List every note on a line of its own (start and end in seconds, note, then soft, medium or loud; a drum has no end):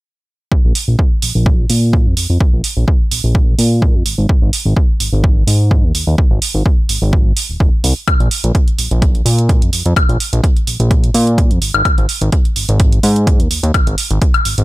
0.52 0.62 A#1 soft
0.52 kick loud
0.65 0.73 A#1 loud
0.75 open hi-hat medium
0.88 0.96 A#1 medium
0.99 kick medium
1.22 1.33 A#1 soft
1.22 open hi-hat loud
1.35 1.66 A#1 medium
1.46 kick loud
1.70 2.07 A#2 medium
1.70 open hi-hat medium
1.93 kick medium
2.06 2.14 F2 medium
2.17 2.27 F2 soft
2.17 open hi-hat loud
2.30 2.38 F2 medium
2.41 2.51 A#1 soft
2.41 kick loud
2.53 2.62 A#1 loud
2.64 open hi-hat loud
2.77 2.85 A#1 medium
2.88 kick medium
3.11 3.22 A#1 soft
3.11 open hi-hat loud
3.24 3.55 A#1 medium
3.35 kick loud
3.58 3.96 A#2 medium
3.58 open hi-hat medium
3.82 kick loud
3.95 4.03 F2 medium
4.06 4.16 G#1 soft
4.06 open hi-hat loud
4.18 4.27 G#1 medium
4.29 4.40 G#1 soft
4.29 kick loud
4.42 4.51 G#1 loud
4.53 open hi-hat loud
4.65 4.74 G#1 medium
4.77 kick loud
5.00 5.10 G#1 soft
5.00 open hi-hat loud
5.13 5.43 G#1 medium
5.24 kick loud
5.47 5.85 G#2 medium
5.47 open hi-hat medium
5.71 kick loud
5.84 5.92 D#2 medium
5.95 6.05 D#2 soft
5.95 open hi-hat loud
6.07 6.16 D#2 medium
6.18 6.29 G#1 soft
6.18 kick loud
6.31 6.39 G#1 loud
6.42 open hi-hat loud
6.54 6.63 G#1 medium
6.66 kick loud
6.89 7.00 G#1 soft
6.89 open hi-hat loud
7.02 7.33 G#1 medium
7.13 kick loud
7.37 open hi-hat loud
7.49 7.58 D#1 soft
7.60 7.70 D#1 medium
7.60 kick loud
7.84 7.94 C2 medium
7.84 open hi-hat loud
8.08 8.18 A#1 soft
8.08 kick loud
8.08 closed hi-hat medium
8.08 high woodblock medium
8.20 8.29 A#1 loud
8.20 closed hi-hat soft
8.31 open hi-hat medium
8.44 8.52 A#1 medium
8.44 closed hi-hat soft
8.55 kick medium
8.55 closed hi-hat medium
8.68 closed hi-hat soft
8.79 8.89 A#1 soft
8.79 open hi-hat loud
8.91 9.22 A#1 medium
8.91 closed hi-hat soft
9.02 kick loud
9.02 closed hi-hat medium
9.15 closed hi-hat soft
9.26 9.63 A#2 medium
9.26 open hi-hat medium
9.39 closed hi-hat soft
9.49 kick loud
9.49 closed hi-hat medium
9.62 9.70 F2 medium
9.62 closed hi-hat soft
9.73 9.83 F2 soft
9.73 open hi-hat loud
9.86 9.94 F2 medium
9.86 closed hi-hat soft
9.96 10.07 A#1 soft
9.96 kick loud
9.96 closed hi-hat medium
9.96 high woodblock medium
10.09 10.17 A#1 loud
10.09 closed hi-hat soft
10.20 open hi-hat medium
10.33 10.41 A#1 medium
10.33 closed hi-hat soft
10.44 kick medium
10.44 closed hi-hat medium
10.57 closed hi-hat soft
10.67 10.77 A#1 soft
10.67 open hi-hat loud
10.80 11.10 A#1 medium
10.80 closed hi-hat soft
10.91 kick loud
10.91 closed hi-hat medium
11.04 closed hi-hat soft
11.14 11.52 A#2 medium
11.14 open hi-hat medium
11.27 closed hi-hat soft
11.38 kick medium
11.38 closed hi-hat medium
11.51 11.59 F2 medium
11.51 closed hi-hat soft
11.62 11.72 G#1 soft
11.62 open hi-hat loud
11.74 11.83 G#1 medium
11.74 closed hi-hat soft
11.74 high woodblock medium
11.85 11.96 G#1 soft
11.85 kick loud
11.85 closed hi-hat medium
11.85 high woodblock medium
11.98 12.06 G#1 loud
11.98 closed hi-hat soft
12.09 open hi-hat medium
12.21 12.30 G#1 medium
12.21 closed hi-hat soft
12.32 kick medium
12.32 closed hi-hat medium
12.45 closed hi-hat soft
12.56 12.66 G#1 soft
12.56 open hi-hat loud
12.69 12.99 G#1 medium
12.69 closed hi-hat soft
12.80 kick loud
12.80 closed hi-hat medium
12.92 closed hi-hat soft
13.03 13.41 G#2 medium
13.03 open hi-hat medium
13.16 closed hi-hat soft
13.27 kick medium
13.27 closed hi-hat medium
13.40 13.48 D#2 medium
13.40 closed hi-hat soft
13.51 13.61 D#2 soft
13.51 open hi-hat loud
13.63 13.72 D#2 medium
13.63 closed hi-hat soft
13.74 13.85 G#1 soft
13.74 kick loud
13.74 closed hi-hat medium
13.74 high woodblock medium
13.87 13.95 G#1 loud
13.87 closed hi-hat soft
13.98 open hi-hat medium
14.11 14.19 G#1 loud
14.11 closed hi-hat soft
14.22 kick medium
14.22 closed hi-hat medium
14.34 closed hi-hat soft
14.34 high woodblock medium
14.45 14.55 G#1 soft
14.45 open hi-hat loud
14.58 14.64 G#1 medium
14.58 closed hi-hat soft